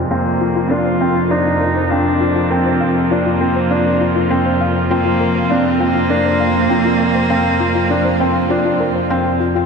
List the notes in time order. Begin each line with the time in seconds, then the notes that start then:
Already playing: C3 F3
0.10 F2 A#3 C4 F4 F5
0.41 F4
0.56 F4
0.70 D4 F4 A#4
0.85 C5
1.00 C4 F5
1.31 D4 D#4 F4
1.46 F4
1.61 A#4
1.76 C5
1.91 C4 D4 F5
2.21 F4
2.35 F4
2.50 C4 A#4
2.65 C5
2.80 F5
3.11 A#3 D4 F4
3.26 F4
3.41 C4 A#4
3.56 C5
3.70 D4 F5
4.01 F4
4.16 F4
4.30 C4 A#4
4.46 C5
4.61 F5
4.90 A#3 C4 F4
5.05 F4
5.20 A#4
5.35 C5
5.50 C4 D4 F5
5.80 A#3 C4 F4
5.95 F4
6.10 D4 A#4
6.25 C5
6.40 F5
6.70 C4 F4
6.85 F4
7.00 A#4
7.15 C5
7.30 C4 F5
7.60 F4
7.75 F4
7.90 D4 A#4
8.05 C5
8.19 C4 F5
8.50 D4 F4
8.65 F4
8.80 A#4
8.95 C5
9.10 C4 F5
9.40 F4
9.55 F4